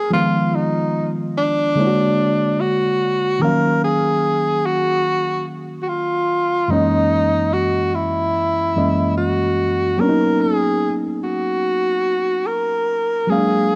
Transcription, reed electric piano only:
0, 0, Header, 1, 2, 480
1, 0, Start_track
1, 0, Tempo, 821918
1, 67, Time_signature, 4, 2, 24, 8
1, 8032, End_track
2, 0, Start_track
2, 0, Title_t, "Reed electric piano"
2, 0, Program_c, 0, 4
2, 0, Control_c, 0, 64, 127
2, 61, Note_on_c, 0, 53, 62
2, 68, Note_on_c, 0, 56, 51
2, 74, Control_c, 0, 64, 0
2, 75, Note_on_c, 0, 59, 53
2, 83, Note_on_c, 0, 51, 50
2, 92, Note_on_c, 0, 65, 68
2, 176, Control_c, 0, 64, 127
2, 1005, Note_off_c, 0, 53, 0
2, 1008, Note_off_c, 0, 56, 0
2, 1012, Note_off_c, 0, 59, 0
2, 1016, Note_off_c, 0, 51, 0
2, 1020, Note_off_c, 0, 65, 0
2, 1023, Note_on_c, 0, 50, 55
2, 1031, Note_on_c, 0, 56, 57
2, 1035, Control_c, 0, 64, 0
2, 1039, Note_on_c, 0, 58, 52
2, 1047, Note_on_c, 0, 73, 50
2, 1053, Note_on_c, 0, 64, 47
2, 1081, Note_off_c, 0, 64, 0
2, 1091, Note_on_c, 0, 66, 64
2, 1152, Control_c, 0, 64, 127
2, 1966, Note_off_c, 0, 50, 0
2, 1970, Note_off_c, 0, 56, 0
2, 1974, Note_off_c, 0, 58, 0
2, 1978, Note_off_c, 0, 73, 0
2, 1981, Note_on_c, 0, 51, 55
2, 1990, Note_on_c, 0, 53, 44
2, 1995, Control_c, 0, 64, 0
2, 1998, Note_on_c, 0, 58, 52
2, 2000, Note_off_c, 0, 66, 0
2, 2006, Note_on_c, 0, 61, 48
2, 2011, Note_on_c, 0, 77, 64
2, 2028, Note_on_c, 0, 54, 54
2, 2030, Note_off_c, 0, 53, 0
2, 2088, Control_c, 0, 64, 127
2, 3881, Note_off_c, 0, 51, 0
2, 3889, Note_off_c, 0, 58, 0
2, 3893, Note_off_c, 0, 61, 0
2, 3896, Note_off_c, 0, 77, 0
2, 3901, Note_on_c, 0, 42, 58
2, 3904, Note_off_c, 0, 54, 0
2, 3907, Note_on_c, 0, 52, 51
2, 3913, Control_c, 0, 64, 0
2, 3913, Note_on_c, 0, 56, 49
2, 3920, Note_on_c, 0, 58, 47
2, 3924, Note_on_c, 0, 61, 55
2, 3930, Note_on_c, 0, 75, 66
2, 4030, Control_c, 0, 64, 127
2, 5081, Note_off_c, 0, 42, 0
2, 5084, Note_off_c, 0, 52, 0
2, 5087, Note_off_c, 0, 56, 0
2, 5090, Note_off_c, 0, 58, 0
2, 5092, Note_off_c, 0, 61, 0
2, 5095, Note_off_c, 0, 75, 0
2, 5112, Note_on_c, 0, 42, 44
2, 5114, Note_on_c, 0, 52, 38
2, 5118, Note_on_c, 0, 56, 39
2, 5121, Note_on_c, 0, 58, 40
2, 5124, Note_on_c, 0, 61, 41
2, 5126, Note_on_c, 0, 75, 49
2, 5825, Note_on_c, 0, 54, 58
2, 5826, Note_off_c, 0, 58, 0
2, 5830, Note_off_c, 0, 42, 0
2, 5830, Note_off_c, 0, 52, 0
2, 5832, Note_off_c, 0, 56, 0
2, 5833, Note_on_c, 0, 58, 47
2, 5835, Note_off_c, 0, 61, 0
2, 5835, Control_c, 0, 64, 0
2, 5836, Note_off_c, 0, 75, 0
2, 5838, Note_on_c, 0, 59, 52
2, 5846, Note_on_c, 0, 61, 52
2, 5853, Note_on_c, 0, 62, 48
2, 5881, Note_off_c, 0, 62, 0
2, 5892, Note_on_c, 0, 63, 64
2, 5934, Control_c, 0, 64, 127
2, 7722, Note_off_c, 0, 54, 0
2, 7726, Note_off_c, 0, 58, 0
2, 7729, Note_off_c, 0, 59, 0
2, 7733, Note_off_c, 0, 61, 0
2, 7750, Note_on_c, 0, 54, 58
2, 7754, Control_c, 0, 64, 0
2, 7756, Note_off_c, 0, 63, 0
2, 7757, Note_on_c, 0, 56, 52
2, 7764, Note_on_c, 0, 58, 49
2, 7771, Note_on_c, 0, 61, 38
2, 7779, Note_on_c, 0, 77, 66
2, 7800, Note_off_c, 0, 61, 0
2, 7811, Note_on_c, 0, 62, 55
2, 7851, Control_c, 0, 64, 127
2, 8032, Note_off_c, 0, 54, 0
2, 8032, Note_off_c, 0, 56, 0
2, 8032, Note_off_c, 0, 58, 0
2, 8032, Note_off_c, 0, 62, 0
2, 8032, Note_off_c, 0, 77, 0
2, 8032, End_track
0, 0, End_of_file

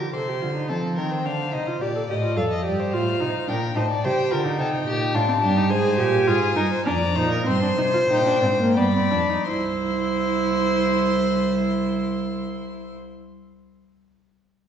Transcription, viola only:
0, 0, Header, 1, 2, 480
1, 0, Start_track
1, 0, Tempo, 556586
1, 600, Time_signature, 3, 2, 24, 8
1, 4920, Tempo, 587084
1, 6360, Tempo, 650759
1, 7320, Tempo, 711744
1, 7800, Tempo, 733496
1, 11203, End_track
2, 0, Start_track
2, 0, Title_t, "Viola"
2, 0, Program_c, 0, 41
2, 8, Note_on_c, 0, 67, 55
2, 55, Note_off_c, 0, 67, 0
2, 123, Note_on_c, 0, 69, 56
2, 242, Note_on_c, 0, 67, 52
2, 255, Note_off_c, 0, 69, 0
2, 360, Note_on_c, 0, 65, 54
2, 373, Note_off_c, 0, 67, 0
2, 473, Note_off_c, 0, 65, 0
2, 479, Note_on_c, 0, 63, 56
2, 597, Note_on_c, 0, 60, 59
2, 610, Note_off_c, 0, 63, 0
2, 1084, Note_on_c, 0, 62, 62
2, 1097, Note_off_c, 0, 60, 0
2, 1320, Note_off_c, 0, 62, 0
2, 1326, Note_on_c, 0, 63, 60
2, 1446, Note_on_c, 0, 65, 62
2, 1459, Note_off_c, 0, 63, 0
2, 1567, Note_on_c, 0, 67, 61
2, 1580, Note_off_c, 0, 65, 0
2, 1682, Note_off_c, 0, 67, 0
2, 1687, Note_on_c, 0, 69, 55
2, 1736, Note_off_c, 0, 69, 0
2, 1809, Note_on_c, 0, 67, 63
2, 1857, Note_off_c, 0, 67, 0
2, 1928, Note_on_c, 0, 65, 64
2, 2042, Note_on_c, 0, 69, 74
2, 2055, Note_off_c, 0, 65, 0
2, 2282, Note_off_c, 0, 69, 0
2, 2287, Note_on_c, 0, 67, 70
2, 2531, Note_on_c, 0, 65, 79
2, 2544, Note_off_c, 0, 67, 0
2, 2765, Note_on_c, 0, 63, 70
2, 2778, Note_off_c, 0, 65, 0
2, 2998, Note_off_c, 0, 63, 0
2, 3003, Note_on_c, 0, 62, 71
2, 3072, Note_off_c, 0, 62, 0
2, 3241, Note_on_c, 0, 63, 77
2, 3310, Note_off_c, 0, 63, 0
2, 3484, Note_on_c, 0, 67, 75
2, 3719, Note_on_c, 0, 65, 69
2, 3732, Note_off_c, 0, 67, 0
2, 3840, Note_on_c, 0, 63, 75
2, 3853, Note_off_c, 0, 65, 0
2, 4436, Note_on_c, 0, 62, 75
2, 4449, Note_off_c, 0, 63, 0
2, 4559, Note_on_c, 0, 60, 68
2, 4572, Note_off_c, 0, 62, 0
2, 4679, Note_off_c, 0, 60, 0
2, 4683, Note_on_c, 0, 62, 80
2, 4801, Note_on_c, 0, 63, 72
2, 4814, Note_off_c, 0, 62, 0
2, 4919, Note_off_c, 0, 63, 0
2, 4924, Note_on_c, 0, 68, 93
2, 5148, Note_off_c, 0, 68, 0
2, 5154, Note_on_c, 0, 67, 94
2, 5384, Note_on_c, 0, 65, 101
2, 5396, Note_off_c, 0, 67, 0
2, 5619, Note_off_c, 0, 65, 0
2, 5624, Note_on_c, 0, 63, 84
2, 5689, Note_off_c, 0, 63, 0
2, 5865, Note_on_c, 0, 62, 90
2, 5930, Note_off_c, 0, 62, 0
2, 6110, Note_on_c, 0, 63, 88
2, 6356, Note_off_c, 0, 63, 0
2, 6360, Note_on_c, 0, 60, 83
2, 6468, Note_off_c, 0, 60, 0
2, 6472, Note_on_c, 0, 62, 73
2, 6519, Note_off_c, 0, 62, 0
2, 6590, Note_on_c, 0, 63, 75
2, 6637, Note_off_c, 0, 63, 0
2, 6707, Note_on_c, 0, 65, 73
2, 6755, Note_off_c, 0, 65, 0
2, 6828, Note_on_c, 0, 63, 81
2, 6942, Note_off_c, 0, 63, 0
2, 6946, Note_on_c, 0, 62, 72
2, 7063, Note_off_c, 0, 62, 0
2, 7067, Note_on_c, 0, 60, 69
2, 7118, Note_off_c, 0, 60, 0
2, 7196, Note_on_c, 0, 58, 76
2, 7315, Note_off_c, 0, 58, 0
2, 7319, Note_on_c, 0, 59, 71
2, 7367, Note_off_c, 0, 59, 0
2, 7437, Note_on_c, 0, 60, 67
2, 7556, Note_on_c, 0, 62, 69
2, 7566, Note_off_c, 0, 60, 0
2, 7677, Note_on_c, 0, 63, 72
2, 7687, Note_off_c, 0, 62, 0
2, 7800, Note_off_c, 0, 63, 0
2, 7804, Note_on_c, 0, 64, 86
2, 10077, Note_off_c, 0, 64, 0
2, 11203, End_track
0, 0, End_of_file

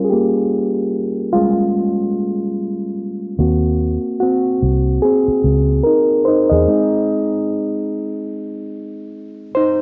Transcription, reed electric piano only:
0, 0, Header, 1, 2, 480
1, 0, Start_track
1, 0, Tempo, 821918
1, 54, Time_signature, 4, 2, 24, 8
1, 5733, End_track
2, 0, Start_track
2, 0, Title_t, "Reed electric piano"
2, 0, Program_c, 0, 4
2, 0, Control_c, 0, 64, 127
2, 0, Note_on_c, 0, 55, 51
2, 0, Note_on_c, 0, 61, 46
2, 0, Note_on_c, 0, 65, 58
2, 0, Note_on_c, 0, 70, 92
2, 24, Note_on_c, 0, 68, 55
2, 57, Note_on_c, 0, 67, 74
2, 68, Note_on_c, 0, 58, 62
2, 156, Note_off_c, 0, 55, 0
2, 157, Note_off_c, 0, 61, 0
2, 160, Note_off_c, 0, 65, 0
2, 512, Note_off_c, 0, 67, 0
2, 518, Note_off_c, 0, 58, 0
2, 775, Note_on_c, 0, 65, 96
2, 781, Note_on_c, 0, 55, 49
2, 783, Note_on_c, 0, 61, 42
2, 789, Note_on_c, 0, 56, 84
2, 994, Note_off_c, 0, 55, 0
2, 995, Note_off_c, 0, 61, 0
2, 997, Note_off_c, 0, 65, 0
2, 1718, Note_off_c, 0, 56, 0
2, 1978, Note_on_c, 0, 58, 50
2, 1980, Control_c, 0, 64, 0
2, 1982, Note_off_c, 0, 68, 0
2, 1982, Note_on_c, 0, 60, 45
2, 1985, Note_off_c, 0, 70, 0
2, 1987, Note_on_c, 0, 66, 59
2, 2066, Control_c, 0, 64, 127
2, 2446, Note_off_c, 0, 66, 0
2, 2453, Note_on_c, 0, 66, 80
2, 2460, Note_off_c, 0, 60, 0
2, 2467, Note_on_c, 0, 60, 62
2, 2673, Note_off_c, 0, 58, 0
2, 2917, Note_off_c, 0, 60, 0
2, 2932, Note_on_c, 0, 68, 90
2, 2947, Note_on_c, 0, 60, 65
2, 2948, Note_off_c, 0, 66, 0
2, 3389, Note_off_c, 0, 68, 0
2, 3397, Note_off_c, 0, 60, 0
2, 3408, Note_on_c, 0, 70, 81
2, 3425, Note_on_c, 0, 63, 63
2, 3643, Note_off_c, 0, 63, 0
2, 3650, Note_on_c, 0, 72, 94
2, 3658, Note_off_c, 0, 70, 0
2, 3668, Note_on_c, 0, 63, 71
2, 3787, Note_off_c, 0, 72, 0
2, 3793, Note_on_c, 0, 75, 79
2, 3796, Note_off_c, 0, 63, 0
2, 3810, Note_on_c, 0, 68, 64
2, 3898, Note_on_c, 0, 56, 52
2, 3902, Control_c, 0, 64, 0
2, 3902, Note_on_c, 0, 60, 47
2, 3905, Note_on_c, 0, 63, 57
2, 3988, Control_c, 0, 64, 127
2, 5547, Note_off_c, 0, 75, 0
2, 5556, Note_off_c, 0, 68, 0
2, 5578, Note_on_c, 0, 72, 90
2, 5581, Note_off_c, 0, 63, 0
2, 5588, Note_on_c, 0, 63, 71
2, 5685, Note_off_c, 0, 72, 0
2, 5693, Note_off_c, 0, 63, 0
2, 5733, Note_off_c, 0, 56, 0
2, 5733, Note_off_c, 0, 60, 0
2, 5733, End_track
0, 0, End_of_file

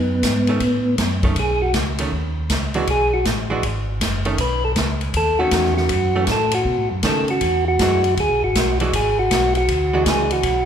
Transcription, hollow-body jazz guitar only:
0, 0, Header, 1, 2, 480
1, 0, Start_track
1, 0, Tempo, 378072
1, 1736, Time_signature, 4, 2, 24, 8
1, 13524, End_track
2, 0, Start_track
2, 0, Title_t, "Hollow-body jazz guitar"
2, 0, Program_c, 0, 26
2, 615, Note_on_c, 0, 51, 52
2, 629, Note_on_c, 0, 57, 59
2, 634, Note_on_c, 0, 61, 63
2, 761, Note_off_c, 0, 51, 0
2, 768, Note_off_c, 0, 57, 0
2, 771, Note_off_c, 0, 61, 0
2, 1570, Note_on_c, 0, 51, 47
2, 1578, Note_on_c, 0, 57, 55
2, 1587, Note_on_c, 0, 61, 59
2, 1719, Note_off_c, 0, 51, 0
2, 1723, Note_off_c, 0, 57, 0
2, 1728, Note_off_c, 0, 61, 0
2, 2533, Note_on_c, 0, 51, 51
2, 2541, Note_on_c, 0, 57, 48
2, 2551, Note_on_c, 0, 61, 58
2, 2680, Note_off_c, 0, 51, 0
2, 2685, Note_off_c, 0, 57, 0
2, 2689, Note_off_c, 0, 61, 0
2, 3492, Note_on_c, 0, 52, 56
2, 3493, Note_on_c, 0, 56, 62
2, 3502, Note_on_c, 0, 62, 63
2, 3502, Note_on_c, 0, 66, 66
2, 3640, Note_off_c, 0, 52, 0
2, 3641, Note_off_c, 0, 56, 0
2, 3645, Note_off_c, 0, 62, 0
2, 3645, Note_off_c, 0, 66, 0
2, 4444, Note_on_c, 0, 52, 48
2, 4448, Note_on_c, 0, 56, 61
2, 4463, Note_on_c, 0, 62, 63
2, 4466, Note_on_c, 0, 66, 59
2, 4596, Note_off_c, 0, 52, 0
2, 4598, Note_off_c, 0, 56, 0
2, 4605, Note_off_c, 0, 62, 0
2, 4607, Note_off_c, 0, 66, 0
2, 5404, Note_on_c, 0, 51, 58
2, 5409, Note_on_c, 0, 57, 60
2, 5413, Note_on_c, 0, 61, 59
2, 5556, Note_off_c, 0, 51, 0
2, 5559, Note_off_c, 0, 57, 0
2, 5561, Note_off_c, 0, 61, 0
2, 6849, Note_on_c, 0, 51, 60
2, 6856, Note_on_c, 0, 57, 65
2, 6867, Note_on_c, 0, 61, 65
2, 7462, Note_off_c, 0, 51, 0
2, 7465, Note_off_c, 0, 57, 0
2, 7471, Note_off_c, 0, 61, 0
2, 7812, Note_on_c, 0, 52, 46
2, 7819, Note_on_c, 0, 57, 59
2, 7829, Note_on_c, 0, 61, 60
2, 7960, Note_off_c, 0, 52, 0
2, 7963, Note_off_c, 0, 57, 0
2, 7969, Note_off_c, 0, 61, 0
2, 8939, Note_on_c, 0, 51, 57
2, 8950, Note_on_c, 0, 57, 49
2, 8957, Note_on_c, 0, 61, 58
2, 9221, Note_off_c, 0, 51, 0
2, 9226, Note_off_c, 0, 57, 0
2, 9230, Note_off_c, 0, 61, 0
2, 9917, Note_on_c, 0, 56, 50
2, 9918, Note_on_c, 0, 52, 43
2, 9926, Note_on_c, 0, 62, 48
2, 9930, Note_on_c, 0, 66, 55
2, 10190, Note_off_c, 0, 52, 0
2, 10190, Note_off_c, 0, 56, 0
2, 10194, Note_off_c, 0, 62, 0
2, 10196, Note_off_c, 0, 66, 0
2, 11185, Note_on_c, 0, 52, 57
2, 11190, Note_on_c, 0, 62, 59
2, 11193, Note_on_c, 0, 56, 53
2, 11201, Note_on_c, 0, 66, 62
2, 11326, Note_off_c, 0, 52, 0
2, 11329, Note_off_c, 0, 62, 0
2, 11331, Note_off_c, 0, 56, 0
2, 11335, Note_off_c, 0, 66, 0
2, 12612, Note_on_c, 0, 52, 57
2, 12619, Note_on_c, 0, 56, 59
2, 12629, Note_on_c, 0, 62, 58
2, 12630, Note_on_c, 0, 66, 60
2, 13223, Note_off_c, 0, 52, 0
2, 13226, Note_off_c, 0, 56, 0
2, 13231, Note_off_c, 0, 62, 0
2, 13232, Note_off_c, 0, 66, 0
2, 13524, End_track
0, 0, End_of_file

